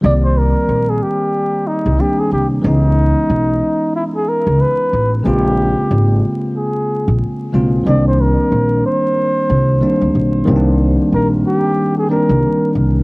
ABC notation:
X:1
M:4/4
L:1/16
Q:"Swing 16ths" 1/4=92
K:Bbdor
V:1 name="Muted trumpet"
=d c B3 A G4 E2 G A G2 | E8 _F A B2 _c3 z | G6 z2 A4 z4 | =d c B4 c8 z2 |
z4 B2 G3 A B4 z2 |]
V:2 name="Tine electric piano"
[E,G,B,C=d]12 [E,G,B,C=D]4 | [_F,A,_CDE]16 | [D,A,B,CF]12- [D,A,B,CF]2 [D,A,B,CF]2 | [E,G,B,C=D]12 [E,G,B,CD]4 |
[E,G,B,CD=D]8- [E,G,B,C_D=D]2 [E,G,B,CD]6 |]
V:3 name="Upright bass" clef=bass
C,,3 z B,,,2 z4 z C,, z2 C,,2 | D,,3 z _C,,2 z4 z D,, z2 =A,,,2 | B,,,3 z A,,,2 z4 z B,,, z2 =B,,,2 | C,,3 z B,,,2 z4 C,,2 z =D,, =B,,,2 |
C,,3 z B,,,2 z4 z C,, z2 C,,2 |]